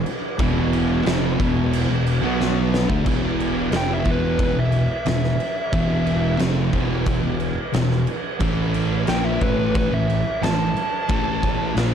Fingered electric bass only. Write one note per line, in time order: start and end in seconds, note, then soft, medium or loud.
0.40 1.02 E1 loud
1.06 1.37 F1 loud
1.40 1.86 E1 medium
1.91 2.21 E1 medium
2.23 2.86 B1 medium
2.90 3.05 D2 medium
3.06 3.69 E1 medium
3.73 4.04 F1 medium
4.06 4.53 E1 medium
4.58 4.88 E1 medium
5.07 5.38 E1 medium
5.74 6.36 E1 loud
6.40 6.71 F1 medium
6.74 7.21 E1 medium
7.25 7.56 E1 medium
7.76 8.06 E1 medium
8.41 9.04 A1 loud
9.09 9.40 A#1 loud
9.42 9.88 A1 medium
9.92 10.23 A1 medium
10.43 10.74 A1 medium
11.10 11.73 A1 medium
11.77 11.94 A#1 loud